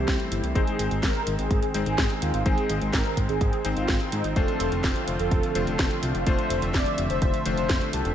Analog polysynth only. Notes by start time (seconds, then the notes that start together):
Already playing: G4
0.31 E4
0.55 G#4
1.03 A#4
1.39 G#4
1.86 G#4
2.22 F4
2.46 G#4
2.93 A#4
3.29 G#4
3.77 F4
4.12 D#4
4.36 A4
4.84 C5
5.20 A4
5.67 A4
6.03 F4
6.27 C5
6.74 D5
7.10 C5
7.58 C5
7.93 A4